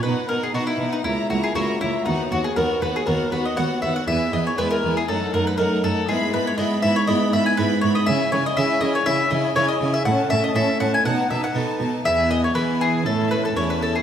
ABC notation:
X:1
M:4/4
L:1/16
Q:1/4=120
K:Elyd
V:1 name="Violin section"
f2 f2 f2 f2 a2 a2 a2 a2 | f2 f2 f2 f2 f2 f2 f2 f2 | g2 g2 g2 g2 f2 f2 f2 f2 | b2 b2 b2 b2 b2 b2 b2 b2 |
[K:C#m] g2 g2 g2 g2 g2 g2 g2 g2 | a2 a2 a2 a2 a2 a2 a2 a2 | g4 g4 a4 a4 |]
V:2 name="Mandolin"
B2 A G F E2 D E2 F G F2 E2 | D2 F G A2 B G A2 B d f2 e f | e2 d c B A2 G =A2 ^A B A2 =A2 | G2 B c d2 e c d2 e g B2 c d |
[K:C#m] e2 c d e2 d c e2 d2 c d2 e | f2 e d e2 f g f2 e f z4 | e2 d c B2 G2 A2 B A c B A G |]
V:3 name="Violin section"
D2 D2 D2 D2 E2 E2 E2 E2 | F2 F2 F2 F2 F2 F2 F2 F2 | E2 E2 E2 E2 D2 D2 D2 D2 | E2 E2 E2 E2 E2 E2 E2 E2 |
[K:C#m] E2 E2 E2 E2 E2 E2 E2 E2 | C2 C2 C2 C2 D2 D2 D2 D2 | E4 E4 E4 E4 |]
V:4 name="Viola section"
B,2 B,2 B,2 B,2 A,2 A,2 A,2 A,2 | B,2 B,2 B,2 B,2 B,2 B,2 B,2 B,2 | B,2 B,2 B,2 B,2 =A,2 A,2 A,2 A,2 | B,2 B,2 B,2 B,2 B,2 B,2 B,2 B,2 |
[K:C#m] C2 C2 C2 C2 C2 C2 C2 C2 | C2 C2 C2 C2 B,2 B,2 B,2 B,2 | B,4 B,4 C4 C4 |]
V:5 name="Harpsichord"
z4 [B,DF]4 z4 [A,CE]4 | z4 [B,F]4 [B,F]4 [B,F]4 | z4 [G,B,E]4 z4 [=A,D]4 | G,4 [B,EG]4 [B,EG]4 [B,EG]4 |
[K:C#m] z4 [CEG]4 [CEG]4 [CEG]4 | z4 [CA]4 z4 [B,DA]4 | z4 [B,EG]4 z4 [CE]4 |]
V:6 name="Harpsichord" clef=bass
B,,2 B,,2 B,,2 B,,2 C,,2 C,,2 C,,2 C,,2 | D,,2 D,,2 D,,2 D,,2 D,,2 D,,2 D,,2 D,,2 | E,,2 E,,2 E,,2 E,,2 F,,2 F,,2 F,,2 F,,2 | G,,2 G,,2 G,,2 G,,2 G,,2 G,,2 G,,2 G,,2 |
[K:C#m] C,2 C,2 C,2 C,2 C,2 C,2 C,2 C,2 | A,,2 A,,2 A,,2 A,,2 B,,2 B,,2 B,,2 B,,2 | E,,4 E,4 A,,4 E,,4 |]
V:7 name="Cello section" clef=bass
B,,2 B,,2 B,,2 B,,2 C,,2 C,,2 C,,2 C,,2 | D,,2 D,,2 D,,2 D,,2 D,,2 D,,2 D,,2 D,,2 | E,,2 E,,2 E,,2 E,,2 F,,2 F,,2 F,,2 F,,2 | G,,2 G,,2 G,,2 G,,2 G,,2 G,,2 G,,2 G,,2 |
[K:C#m] C,2 C,2 C,2 C,2 C,2 C,2 C,2 C,2 | A,,2 A,,2 A,,2 A,,2 B,,2 B,,2 B,,2 B,,2 | E,,4 E,4 A,,4 E,,4 |]